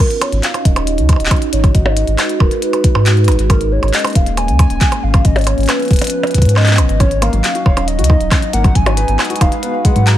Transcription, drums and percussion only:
0.11 closed hi-hat soft
0.21 closed hi-hat loud
0.21 percussion blips medium
0.32 closed hi-hat soft
0.43 clap loud
0.43 closed hi-hat medium
0.54 closed hi-hat soft
0.54 percussion blips medium
0.65 kick loud
0.65 closed hi-hat loud
0.76 closed hi-hat soft
0.76 percussion blips medium
0.87 closed hi-hat medium
0.98 closed hi-hat soft
1.09 kick loud
1.09 closed hi-hat loud
1.09 percussion blips medium
1.13 percussion blips soft
1.16 closed hi-hat soft
1.16 percussion blips soft
1.26 clap loud
1.26 closed hi-hat soft
1.31 kick loud
1.31 closed hi-hat medium
1.31 percussion blips medium
1.36 closed hi-hat soft
1.42 closed hi-hat soft
1.53 closed hi-hat medium
1.64 kick loud
1.64 closed hi-hat soft
1.64 percussion blips medium
1.75 kick loud
1.75 closed hi-hat medium
1.86 percussion blips medium
1.97 closed hi-hat medium
2.07 closed hi-hat soft
2.18 clap loud
2.18 closed hi-hat medium
2.18 percussion blips medium
2.29 closed hi-hat soft
2.40 kick loud
2.40 percussion blips medium
2.51 closed hi-hat soft
2.62 closed hi-hat medium
2.73 closed hi-hat soft
2.73 percussion blips medium
2.84 kick loud
2.84 closed hi-hat medium
2.95 percussion blips medium
3.06 clap loud
3.06 closed hi-hat medium
3.17 closed hi-hat soft
3.24 closed hi-hat soft
3.28 closed hi-hat loud
3.28 percussion blips medium
3.32 closed hi-hat soft
3.39 closed hi-hat soft
3.50 kick loud
3.50 closed hi-hat medium
3.50 percussion blips medium
3.61 closed hi-hat soft
3.83 closed hi-hat soft
3.83 percussion blips soft
3.88 closed hi-hat soft
3.94 clap loud
3.94 closed hi-hat medium
3.99 closed hi-hat soft
4.04 closed hi-hat soft
4.04 percussion blips medium
4.07 closed hi-hat soft
4.10 closed hi-hat soft
4.13 closed hi-hat soft
4.15 kick loud
4.15 closed hi-hat medium
4.26 closed hi-hat soft
4.37 closed hi-hat medium
4.37 percussion blips medium
4.48 closed hi-hat soft
4.59 kick loud
4.59 closed hi-hat medium
4.59 percussion blips medium
4.70 closed hi-hat soft
4.81 kick loud
4.81 clap loud
4.81 closed hi-hat medium
4.92 closed hi-hat soft
4.92 percussion blips soft
5.14 kick loud
5.14 closed hi-hat soft
5.14 percussion blips medium
5.25 kick loud
5.25 closed hi-hat medium
5.36 closed hi-hat soft
5.36 percussion blips medium
5.38 closed hi-hat soft
5.41 closed hi-hat soft
5.44 closed hi-hat soft
5.47 closed hi-hat medium
5.47 percussion blips soft
5.58 closed hi-hat soft
5.60 closed hi-hat soft
5.63 closed hi-hat soft
5.66 clap loud
5.66 closed hi-hat soft
5.69 closed hi-hat medium
5.69 percussion blips medium
5.80 closed hi-hat soft
5.82 closed hi-hat soft
5.85 closed hi-hat soft
5.88 kick loud
5.88 closed hi-hat soft
5.91 closed hi-hat soft
5.93 closed hi-hat soft
5.96 closed hi-hat medium
5.99 closed hi-hat medium
6.01 closed hi-hat medium
6.01 percussion blips soft
6.04 closed hi-hat medium
6.07 closed hi-hat medium
6.10 closed hi-hat medium
6.23 closed hi-hat soft
6.23 percussion blips medium
6.27 closed hi-hat soft
6.31 kick soft
6.31 closed hi-hat soft
6.34 kick medium
6.34 closed hi-hat medium
6.42 kick medium
6.42 closed hi-hat medium
6.45 closed hi-hat soft
6.49 closed hi-hat medium
6.56 clap medium
6.56 percussion blips soft
6.60 clap medium
6.64 clap medium
6.67 clap medium
6.67 closed hi-hat soft
6.71 clap medium
6.75 clap loud
6.75 closed hi-hat medium
6.75 percussion blips medium
6.89 closed hi-hat soft
7.00 kick loud
7.00 closed hi-hat medium
7.00 percussion blips soft
7.11 closed hi-hat soft
7.22 closed hi-hat medium
7.22 percussion blips medium
7.33 closed hi-hat soft
7.44 clap loud
7.44 closed hi-hat medium
7.55 closed hi-hat soft
7.66 kick loud
7.66 percussion blips medium
7.77 closed hi-hat soft
7.77 percussion blips medium
7.88 closed hi-hat medium
7.99 closed hi-hat soft
8.04 closed hi-hat medium
8.10 kick loud
8.10 percussion blips medium
8.21 closed hi-hat soft
8.32 kick loud
8.32 clap loud
8.32 closed hi-hat medium
8.32 percussion blips medium
8.42 closed hi-hat soft
8.53 closed hi-hat medium
8.64 kick loud
8.64 closed hi-hat soft
8.64 percussion blips medium
8.75 kick loud
8.75 closed hi-hat medium
8.86 closed hi-hat soft
8.86 percussion blips medium
8.97 closed hi-hat medium
9.08 closed hi-hat soft
9.19 clap loud
9.19 closed hi-hat soft
9.19 percussion blips medium
9.25 closed hi-hat soft
9.30 closed hi-hat soft
9.36 closed hi-hat medium
9.41 kick loud
9.41 closed hi-hat medium
9.41 percussion blips medium
9.52 closed hi-hat soft
9.63 closed hi-hat medium
9.85 kick loud
9.85 closed hi-hat medium
9.96 closed hi-hat soft
10.07 clap loud
10.07 closed hi-hat medium

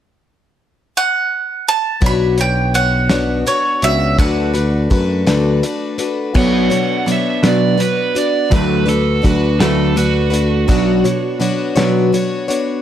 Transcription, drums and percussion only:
2.02 kick loud
2.02 closed hi-hat medium
2.38 closed hi-hat medium
2.74 closed hi-hat medium
3.10 snare loud
3.10 closed hi-hat medium
3.47 closed hi-hat medium
3.82 closed hi-hat medium
4.19 kick loud
4.19 closed hi-hat medium
4.55 closed hi-hat medium
4.91 kick medium
4.91 closed hi-hat medium
5.27 snare loud
5.27 closed hi-hat medium
5.63 closed hi-hat medium
5.99 closed hi-hat medium
6.35 kick loud
6.35 crash loud
6.71 closed hi-hat medium
7.08 closed hi-hat medium
7.44 snare loud
7.44 closed hi-hat medium
7.80 closed hi-hat medium
8.16 closed hi-hat medium
8.52 kick loud
8.52 closed hi-hat medium
8.89 closed hi-hat medium
9.24 kick medium
9.24 closed hi-hat medium
9.60 snare loud
9.60 closed hi-hat medium
9.97 closed hi-hat medium
10.34 closed hi-hat medium
10.69 kick loud
10.69 closed hi-hat medium
11.05 closed hi-hat medium
11.42 closed hi-hat medium
11.77 snare loud
11.77 closed hi-hat medium
12.14 closed hi-hat medium
12.50 closed hi-hat medium

